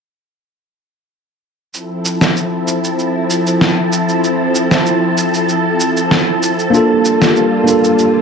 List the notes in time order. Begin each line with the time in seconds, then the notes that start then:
1.72 F3 C4 E4 A4 A5, shaker
2.05 shaker
2.21 snare, shaker
2.36 shaker
2.68 shaker
2.84 shaker
2.99 shaker
3.30 shaker
3.47 shaker
3.61 snare, shaker
3.92 shaker
4.09 shaker
4.24 shaker
4.55 shaker
4.71 snare, shaker
4.86 shaker
5.18 shaker
5.34 shaker
5.49 shaker
5.80 shaker
5.97 shaker
6.11 snare, shaker
6.43 shaker
6.59 shaker
6.70 G3 A#3 D4 F4, shaker
6.75 F4 A4
7.05 shaker
7.22 snare, shaker
7.36 shaker
7.64 A#3 D4, shaker
7.68 F4 A4
7.84 shaker
7.99 shaker